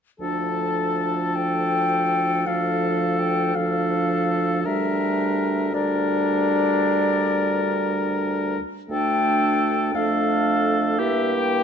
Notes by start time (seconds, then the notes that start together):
0.20 D2 F3 D4 A4 A5
1.35 G5
2.46 F3 D4 A4 F5
3.19 G5
3.55 F3 D4 A4 F5
4.64 D2 G3 D4 A#4 E5
5.73 G3 D4 A#4 D5
8.89 D2 A3 D4 A4 G5
9.94 F2 A3 D4 A4 F5
10.98 G2 A#3 E4 G4 E5
11.35 G5